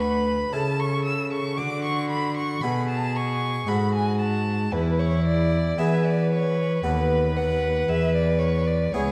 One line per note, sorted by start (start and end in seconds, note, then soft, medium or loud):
0.00 0.48 D2 medium
0.00 0.50 D2 medium
0.00 0.23 A3 soft
0.00 0.23 D4 soft
0.00 0.23 F#4 soft
0.00 0.55 B4 medium
0.00 0.54 B5 medium
0.53 1.54 C#3 medium
0.53 1.61 C#3 medium
0.53 1.55 E4 soft
0.53 1.57 A4 medium
0.53 1.55 A4 soft
0.53 0.81 A5 medium
0.79 1.04 C#6 loud
1.04 1.31 E6 medium
1.32 1.59 C#6 medium
1.57 2.59 D3 medium
1.57 2.63 D3 medium
1.57 2.65 F#4 medium
1.57 1.83 D6 loud
1.84 2.10 C#6 medium
2.10 2.36 B5 medium
2.37 2.62 C#6 medium
2.61 3.64 B2 medium
2.61 3.66 B2 medium
2.61 3.39 F#4 soft
2.61 3.70 G#4 medium
2.61 3.39 A4 soft
2.61 2.88 B5 medium
2.89 3.17 A5 medium
3.16 3.70 C#6 loud
3.67 4.68 G#2 medium
3.67 4.71 G#2 medium
3.67 4.43 F#4 soft
3.67 4.73 F#4 medium
3.67 4.43 A4 medium
3.67 3.94 B5 medium
3.94 4.20 G#5 medium
4.20 4.74 A5 medium
4.72 5.74 E2 medium
4.72 5.77 E2 medium
4.72 5.77 E4 medium
4.72 5.01 B4 medium
4.99 5.25 C#5 medium
5.26 5.80 D5 medium
5.78 6.80 E3 medium
5.78 6.82 E3 medium
5.78 6.54 B3 medium
5.78 6.55 E4 soft
5.78 6.54 G#4 medium
5.78 8.91 B4 loud
5.78 6.07 E5 medium
6.05 6.31 D5 medium
6.32 6.83 C#5 medium
6.84 7.85 D#2 medium
6.84 7.87 D#2 medium
6.84 7.85 B3 soft
6.84 7.85 F#4 soft
6.84 7.86 A4 soft
6.84 7.38 B4 loud
7.37 7.90 F#5 medium
7.88 8.90 E2 medium
7.88 8.93 E2 medium
7.88 8.14 E5 loud
8.15 8.40 D5 medium
8.39 8.68 C#5 medium
8.67 8.94 D5 medium
8.92 9.12 C#2 medium
8.92 9.12 B3 medium
8.92 9.12 E4 soft
8.92 9.12 G#4 medium
8.92 9.12 C#5 medium